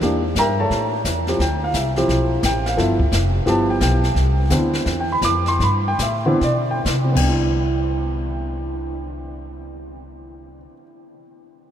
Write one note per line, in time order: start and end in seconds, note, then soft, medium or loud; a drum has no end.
0.01 0.34 E2 medium
0.01 0.21 E3 medium
0.01 0.22 A#3 medium
0.01 0.22 D4 medium
0.01 0.22 G4 medium
0.01 brush sweep soft
0.01 kick soft
0.01 snare soft
0.35 0.69 G2 medium
0.35 0.59 E5 medium
0.35 0.59 G5 medium
0.35 0.59 A#5 medium
0.35 kick soft
0.35 snare medium
0.35 hi-hat pedal medium
0.39 0.59 A#4 medium
0.60 0.91 A4 medium
0.60 0.91 C#5 medium
0.60 0.92 E5 medium
0.60 0.91 A5 medium
0.70 1.04 A2 medium
0.70 brush sweep soft
0.70 kick soft
0.70 snare soft
1.05 1.38 E2 medium
1.05 kick soft
1.05 snare medium
1.05 hi-hat pedal medium
1.27 1.39 F3 medium
1.27 1.39 C4 medium
1.27 1.39 E4 soft
1.27 1.39 G4 medium
1.27 snare soft
1.39 1.73 D2 medium
1.39 1.62 G5 medium
1.39 brush sweep soft
1.39 kick soft
1.39 snare soft
1.64 1.75 F5 medium
1.74 2.07 C2 medium
1.74 2.28 E5 medium
1.74 kick soft
1.74 snare medium
1.74 hi-hat pedal medium
1.96 2.41 F3 medium
1.96 2.41 C4 medium
1.96 2.41 E4 medium
1.96 2.41 G4 medium
1.96 snare soft
2.08 2.42 B1 medium
2.08 brush sweep soft
2.08 kick soft
2.08 snare soft
2.43 2.76 A1 medium
2.43 2.66 G5 medium
2.43 kick soft
2.43 snare medium
2.43 hi-hat pedal medium
2.66 2.78 F5 medium
2.66 snare soft
2.77 3.11 G1 medium
2.77 2.97 F3 medium
2.77 2.97 B3 medium
2.77 2.97 E4 medium
2.77 2.97 A4 medium
2.77 3.31 E5 medium
2.77 brush sweep soft
2.77 kick soft
2.77 snare soft
3.00 kick medium
3.12 3.45 F1 medium
3.12 snare medium
3.12 hi-hat pedal soft
3.46 3.80 G1 medium
3.46 3.99 F3 medium
3.46 3.99 B3 medium
3.46 3.99 E4 medium
3.46 3.99 G4 medium
3.46 3.69 A5 medium
3.46 brush sweep soft
3.46 kick soft
3.46 snare soft
3.70 3.81 G5 medium
3.81 4.14 B1 medium
3.81 4.35 G5 medium
3.81 kick soft
3.81 snare medium
3.81 hi-hat pedal medium
4.04 snare soft
4.15 4.49 C2 medium
4.15 brush sweep soft
4.15 kick soft
4.15 snare soft
4.50 4.85 D2 medium
4.50 5.05 D3 medium
4.50 5.05 B3 medium
4.50 5.05 C4 medium
4.50 5.05 E4 medium
4.50 kick soft
4.50 snare medium
4.50 hi-hat pedal medium
4.73 snare soft
4.86 5.21 E2 medium
4.86 brush sweep soft
4.86 kick soft
4.86 snare soft
5.00 5.11 G5 medium
5.12 5.23 B5 medium
5.22 5.58 F2 medium
5.22 5.47 D6 loud
5.22 kick soft
5.22 snare medium
5.22 hi-hat pedal soft
5.46 5.61 C6 medium
5.46 snare soft
5.59 5.98 G2 medium
5.59 brush sweep soft
5.59 kick soft
5.59 snare soft
5.64 5.86 B5 medium
5.88 6.01 G5 medium
5.99 6.39 A2 medium
5.99 6.26 E5 medium
5.99 kick soft
5.99 snare medium
5.99 hi-hat pedal soft
6.26 6.39 D3 medium
6.26 6.39 B3 medium
6.26 6.40 C4 medium
6.26 6.40 E4 medium
6.26 6.42 C5 medium
6.41 6.84 B2 medium
6.41 6.70 D5 medium
6.41 brush sweep soft
6.41 kick soft
6.41 snare soft
6.71 6.80 G5 medium
6.85 7.14 C3 medium
6.85 kick soft
6.85 snare medium
6.85 hi-hat pedal medium
7.04 10.57 C3 medium
7.12 10.64 C2 medium
7.12 10.65 B3 medium
7.12 kick medium
7.16 10.73 D4 medium
7.16 10.66 G5 medium
7.16 crash medium
7.29 10.82 E4 medium